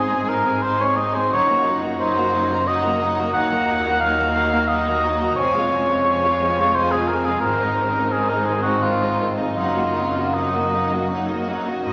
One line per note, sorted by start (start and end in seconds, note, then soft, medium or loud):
0.00 1.31 G#1 medium
0.00 1.27 G#2 soft
0.00 1.31 G#2 medium
0.00 0.21 G#3 soft
0.00 0.46 C4 soft
0.00 1.27 C4 medium
0.00 1.32 C#4 soft
0.00 0.11 D#4 soft
0.00 3.31 D#4 medium
0.00 0.30 G#4 medium
0.11 0.28 C4 soft
0.11 0.38 D#4 soft
0.11 0.29 G#4 soft
0.11 0.28 G#5 soft
0.28 0.45 G#3 medium
0.28 0.47 D#4 soft
0.28 0.56 G#4 soft
0.28 0.64 A#4 medium
0.28 0.45 C6 soft
0.46 0.73 C4 soft
0.46 0.63 C4 soft
0.46 0.64 G#4 soft
0.46 0.63 G#5 soft
0.62 0.78 G#3 soft
0.62 0.90 D#4 soft
0.62 0.80 D#4 soft
0.62 0.82 C5 medium
0.62 0.78 C6 soft
0.77 0.97 C4 soft
0.77 1.06 G#4 soft
0.77 0.97 G#4 soft
0.77 0.98 C#5 medium
0.77 0.97 G#5 soft
0.96 1.14 G#3 soft
0.96 1.23 C4 soft
0.96 1.13 D#4 medium
0.96 1.16 D#5 medium
0.96 1.14 C6 soft
1.13 1.31 C4 soft
1.13 1.30 D#4 soft
1.13 1.31 G#4 soft
1.13 1.31 C5 medium
1.13 1.32 G#5 soft
1.29 3.35 F#1 medium
1.29 3.30 F#2 medium
1.29 3.34 F#2 medium
1.29 1.46 F#3 medium
1.29 5.21 A#3 medium
1.29 1.47 D#4 medium
1.29 1.47 F#5 medium
1.33 1.75 C#5 medium
1.46 1.65 A#3 soft
1.46 1.74 D#4 soft
1.46 1.64 F#4 soft
1.46 1.65 A#5 soft
1.64 1.82 F#3 medium
1.64 1.81 D#4 medium
1.64 1.82 F4 soft
1.64 1.82 F#5 soft
1.81 1.99 A#3 medium
1.81 2.09 D#4 soft
1.81 1.99 F#4 soft
1.81 1.98 A#5 soft
1.98 2.14 F#3 medium
1.98 2.25 A#3 soft
1.98 2.14 D#4 soft
1.98 2.69 C5 medium
1.98 2.14 F#5 soft
2.14 2.33 A#3 soft
2.14 2.42 F#4 soft
2.14 2.32 F#4 medium
2.14 2.32 A#5 soft
2.31 2.50 F#3 medium
2.31 2.49 D#4 soft
2.31 2.60 A#4 medium
2.31 2.49 F#5 medium
2.49 2.66 A#3 soft
2.49 2.77 D#4 soft
2.49 2.66 F#4 medium
2.49 2.66 A#5 medium
2.67 2.83 F#3 medium
2.67 2.82 D#4 medium
2.67 2.94 F#4 medium
2.67 3.33 D#5 medium
2.67 2.82 F#5 medium
2.82 3.01 A#3 medium
2.82 3.00 F#4 medium
2.82 3.11 A#4 medium
2.82 3.01 A#5 medium
3.00 3.18 F#3 soft
3.00 3.27 D#4 medium
3.00 3.18 D#4 medium
3.00 3.18 F#5 medium
3.18 3.35 A#3 medium
3.18 3.35 F#4 medium
3.18 3.36 A#5 soft
3.33 5.33 D#2 medium
3.33 5.37 D#2 medium
3.33 5.38 D#2 medium
3.33 3.50 F#3 medium
3.33 5.21 D#4 medium
3.33 3.50 D#4 medium
3.33 4.02 F#5 medium
3.33 3.50 F#5 medium
3.52 3.69 A#3 medium
3.52 3.79 D#4 soft
3.52 3.70 F#4 medium
3.52 3.69 A#5 medium
3.68 3.86 F#3 medium
3.68 3.85 D#4 medium
3.68 3.85 F4 soft
3.68 3.86 F#5 medium
3.85 4.02 A#3 medium
3.85 4.12 D#4 medium
3.85 4.03 F#4 medium
3.85 4.02 A#5 medium
4.00 4.18 F#3 medium
4.00 4.29 A#3 soft
4.00 4.18 D#4 medium
4.00 4.70 F5 loud
4.00 4.18 F#5 medium
4.18 4.36 A#3 medium
4.18 4.45 F#4 soft
4.18 4.36 F#4 medium
4.18 4.36 A#5 soft
4.36 4.53 F#3 medium
4.36 4.53 D#4 medium
4.36 4.63 A#4 medium
4.36 4.53 F#5 medium
4.53 4.70 A#3 medium
4.53 4.79 D#4 soft
4.53 4.69 F#4 medium
4.53 4.69 A#5 medium
4.68 4.86 F#3 soft
4.68 4.85 D#4 medium
4.68 4.97 F#4 medium
4.68 5.36 D#5 medium
4.68 4.86 F#5 medium
4.87 5.04 A#3 soft
4.87 5.04 F#4 medium
4.87 5.14 A#4 medium
4.87 5.04 A#5 medium
5.04 5.21 F#3 medium
5.04 5.31 D#4 medium
5.04 5.21 D#4 medium
5.04 5.21 F#5 medium
5.22 5.38 A#3 medium
5.22 5.38 F#4 medium
5.22 5.38 F#4 soft
5.22 5.38 A#5 medium
5.36 7.44 F1 medium
5.36 7.43 F2 medium
5.36 7.39 F2 medium
5.36 5.53 F3 medium
5.36 7.39 G#3 medium
5.36 5.53 C4 medium
5.36 7.40 F4 medium
5.36 6.76 C#5 medium
5.36 5.53 G#5 medium
5.55 5.72 G#3 medium
5.55 5.83 C4 soft
5.55 5.72 F4 medium
5.55 5.71 F5 medium
5.71 5.89 F3 medium
5.71 5.88 C4 medium
5.71 5.89 C#4 soft
5.71 5.89 G#5 medium
5.89 6.06 G#3 medium
5.89 6.17 C4 medium
5.89 6.07 F4 medium
5.89 6.07 F5 medium
6.06 6.22 F3 medium
6.06 6.35 G#3 soft
6.06 6.22 C4 medium
6.06 6.23 G#5 medium
6.24 6.41 G#3 medium
6.24 6.41 F4 medium
6.24 6.52 F4 soft
6.24 6.41 F5 medium
6.41 6.58 F3 medium
6.41 6.59 C4 medium
6.41 6.69 G#4 medium
6.41 6.58 G#5 medium
6.59 6.75 G#3 medium
6.59 6.87 C4 medium
6.59 6.77 F4 medium
6.59 6.76 F5 medium
6.74 6.91 F3 medium
6.74 7.03 F4 medium
6.74 6.93 C5 loud
6.74 6.92 G#5 medium
6.79 6.93 C4 medium
6.92 7.09 G#3 medium
6.92 7.09 F4 medium
6.92 7.09 G#4 medium
6.92 7.20 G#4 medium
6.92 7.10 F5 medium
7.08 7.26 F3 medium
7.08 7.27 C4 medium
7.08 7.37 C4 medium
7.08 7.27 A#4 medium
7.08 7.26 G#5 medium
7.25 7.44 G#3 medium
7.25 7.43 F4 medium
7.25 7.44 F4 medium
7.25 7.40 G#4 medium
7.25 7.43 F5 medium
7.41 9.54 G#1 medium
7.41 9.54 G#2 medium
7.41 7.60 D#3 medium
7.41 9.53 C4 medium
7.41 7.60 C4 medium
7.41 11.47 D#4 medium
7.41 8.14 A#4 medium
7.41 7.59 C5 medium
7.60 7.78 G#3 medium
7.60 7.89 C4 soft
7.60 7.78 D#4 medium
7.60 7.78 D#5 medium
7.77 7.96 D#3 soft
7.77 7.95 C4 medium
7.77 7.96 C#4 soft
7.77 7.95 C5 medium
7.95 8.13 G#3 medium
7.95 8.24 C4 soft
7.95 8.13 D#4 soft
7.95 8.12 D#5 soft
8.12 8.29 D#3 medium
8.12 8.30 C4 medium
8.12 8.31 G#4 medium
8.12 8.29 C5 medium
8.16 8.42 G#3 soft
8.29 8.48 G#3 soft
8.29 8.47 D#4 soft
8.29 8.59 D#4 soft
8.29 8.47 A#4 medium
8.29 8.47 D#5 soft
8.45 8.66 D#3 medium
8.45 8.66 C4 medium
8.45 8.61 G#4 medium
8.45 8.65 C5 soft
8.50 8.77 G#4 medium
8.62 8.83 D#4 medium
8.62 8.83 F#4 medium
8.62 8.83 D#5 medium
8.67 8.84 G#3 soft
8.67 8.96 C4 soft
8.82 9.01 D#3 soft
8.82 9.00 C4 medium
8.82 9.30 F4 medium
8.82 9.01 C5 medium
8.87 9.14 D#4 medium
9.03 9.20 G#3 soft
9.03 9.21 D#4 soft
9.03 9.32 G#4 medium
9.03 9.20 D#5 soft
9.19 9.39 D#3 soft
9.19 9.39 C4 soft
9.19 9.51 C4 soft
9.19 9.38 C5 soft
9.38 9.58 G#3 soft
9.38 9.57 D#4 soft
9.38 9.58 D#4 soft
9.38 9.57 D#5 soft
9.55 11.60 F#1 medium
9.55 11.59 F#2 medium
9.55 11.80 F#2 medium
9.55 9.76 F#3 soft
9.55 11.46 A#3 medium
9.55 9.76 D#4 medium
9.55 10.35 F4 medium
9.55 9.75 F#5 medium
9.77 10.08 A#3 soft
9.77 9.96 A#3 soft
9.77 9.96 F#4 soft
9.77 9.96 D#5 soft
9.96 10.15 F#3 soft
9.96 10.16 C4 soft
9.96 10.15 D#4 soft
9.96 10.15 F#5 soft
10.15 10.34 A#3 soft
10.15 10.47 A#3 soft
10.15 10.34 F#4 soft
10.15 10.34 D#5 soft
10.33 10.53 F#3 soft
10.33 11.10 D#4 medium
10.33 10.53 D#4 soft
10.33 10.52 F#5 soft
10.38 10.67 F#3 soft
10.53 10.73 A#3 soft
10.53 10.85 D#4 soft
10.53 10.73 F#4 soft
10.53 10.72 D#5 soft
10.73 10.92 F#3 soft
10.73 10.92 D#4 soft
10.73 11.04 A#4 soft
10.73 10.91 F#5 soft
10.92 11.10 A#3 soft
10.92 11.23 A#3 soft
10.92 11.11 F#4 soft
10.92 11.10 D#5 soft
11.10 11.27 F#3 soft
11.10 11.41 D#4 soft
11.10 11.28 D#4 soft
11.10 11.27 F#5 soft
11.29 11.47 A#3 soft
11.29 11.49 F#4 soft
11.29 11.59 A#4 soft
11.29 11.48 D#5 soft
11.47 11.66 F#3 soft
11.47 11.77 A#3 soft
11.47 11.67 D#4 soft
11.47 11.66 F#5 soft
11.66 11.84 A#3 soft
11.66 11.84 D#4 soft
11.66 11.83 F#4 soft
11.66 11.82 D#5 soft
11.83 11.93 G#1 medium
11.83 11.93 G#2 medium
11.83 11.93 C4 medium
11.83 11.93 F#4 medium
11.83 11.93 D#5 medium